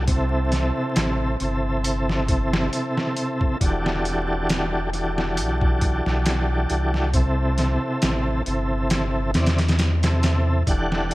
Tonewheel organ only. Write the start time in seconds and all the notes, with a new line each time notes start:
0.08 C3 C4 E4
0.12 A4
1.40 C3 C4 E4
1.44 A4
3.60 E3 D4 F#4 G4
3.65 A4
4.93 E3 D4 F#4 G4
4.97 A4
7.13 C3 C4 E4
7.17 A4
8.46 C3 C4 E4 A4
9.34 C3 C4 E4 D5
10.03 C3 C4 E4 A4
10.67 E3 D4 G4 F#5
10.71 A4